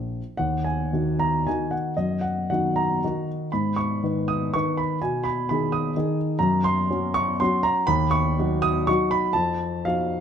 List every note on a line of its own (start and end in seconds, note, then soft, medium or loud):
0.00 0.20 A#1 soft
0.37 0.92 D#2 soft
0.37 0.64 F#5 medium
0.64 1.20 G#5 medium
0.93 1.43 D#3 soft
0.93 1.44 D#4 soft
0.93 1.44 F#4 soft
1.19 1.46 A#5 medium
1.47 1.93 D#3 soft
1.47 1.93 D#4 soft
1.47 1.94 F#4 soft
1.47 1.72 G#5 medium
1.71 1.96 F#5 medium
1.97 2.49 F#2 soft
1.97 2.22 D#5 medium
2.21 2.48 F#5 medium
2.50 3.00 D#3 soft
2.50 3.00 D#4 soft
2.50 3.00 F#4 soft
2.50 2.77 F#5 medium
2.76 3.27 A#5 medium
3.04 3.50 D#3 soft
3.04 3.50 D#4 soft
3.04 3.50 F#4 soft
3.52 4.02 G#2 soft
3.52 3.77 B5 medium
3.76 4.29 C#6 medium
4.03 4.50 D#3 soft
4.03 4.50 D#4 soft
4.03 4.50 B4 soft
4.28 4.53 D#6 medium
4.54 4.98 D#3 soft
4.54 4.98 D#4 soft
4.54 4.98 B4 soft
4.54 4.77 C#6 medium
4.77 5.01 B5 medium
5.02 5.48 B2 soft
5.02 5.25 G#5 medium
5.24 5.48 B5 medium
5.49 5.92 D#3 soft
5.49 5.93 D#4 soft
5.49 5.93 G#4 soft
5.49 5.73 B5 medium
5.72 6.18 D#6 medium
5.97 6.37 D#3 soft
5.97 6.37 D#4 soft
5.97 6.37 G#4 soft
6.39 6.88 F#2 medium
6.39 6.63 A#5 medium
6.64 7.16 C6 medium
6.90 7.37 F#3 soft
6.90 7.37 C#4 soft
6.90 7.37 F#4 soft
7.14 7.40 C#6 medium
7.40 7.84 F#3 soft
7.40 7.84 C#4 soft
7.40 7.85 F#4 medium
7.40 7.64 C6 medium
7.63 7.87 A#5 medium
7.87 8.36 D#2 medium
7.87 8.12 B5 loud
8.11 8.63 C#6 medium
8.39 8.85 F#3 soft
8.39 8.85 D#4 soft
8.39 8.85 F#4 soft
8.62 8.87 D#6 medium
8.87 9.31 F#3 soft
8.87 9.31 D#4 soft
8.87 9.31 F#4 soft
8.87 9.11 C#6 medium
9.11 9.35 B5 medium
9.33 9.84 F2 medium
9.33 9.85 A5 medium
9.85 10.20 F3 soft
9.85 10.20 D#4 soft
9.85 10.20 F#4 soft
9.85 10.20 F5 medium